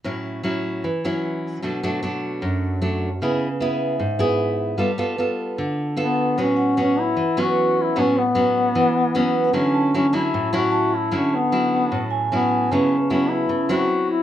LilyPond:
<<
  \new Staff \with { instrumentName = "Vibraphone" } { \time 4/4 \key a \major \tempo 4 = 152 r1 | r1 | r4 e''4. r4. | r1 |
r8 fis''4. r2 | r1 | r8 a''4. r4 a''4~ | a''8 r2 gis''4. |
a''4. r2 r8 | }
  \new Staff \with { instrumentName = "Duduk" } { \time 4/4 \key a \major r1 | r1 | r1 | r2. b4 |
cis'4 cis'8 e'4 fis'4 e'8 | cis'8 b2~ b8 b4 | cis'4 cis'8 e'4 fis'4 e'8 | cis'8 b2 r8 b4 |
cis'4 cis'8 e'4 fis'4 e'8 | }
  \new Staff \with { instrumentName = "Nylon-string guitar" } { \time 4/4 \key a \major << { <fis cis' e'>4 <fis cis' e'>4 r8 <fis cis' e'>4. | <fis a d'>8 <fis a d'>8 <fis a d'>2 <fis a d'>8 r8 | <b e' gis'>8 r8 <b e' gis'>4 r8 <b e' gis'>4. | <b f' a'>8 <b f' a'>8 <b f' a'>2 <b f' a'>4 |
<fis b cis'>4 <fis b cis'>4 r8 <fis b cis'>4. | <fis b cis'>8 r8 <fis b cis'>4. r8 <fis b cis'>4 | <fis cis' e'>4 <fis cis' e'>8 <fis cis' e'>4 <fis cis' e'>4. | <fis cis' e'>8 r8 <fis cis' e'>2 <fis cis' e'>4 |
<fis b e'>8 r8 <fis b e'>4 r8 <fis c' e'>4. | } \\ { a,2 e2 | b,2 fis,2 | cis2 gis,2 | g2 d2 |
a,2 e2 | a,2 e2 | d2 a,2 | d2 a,2 |
cis2 cis4 r4 | } >> }
>>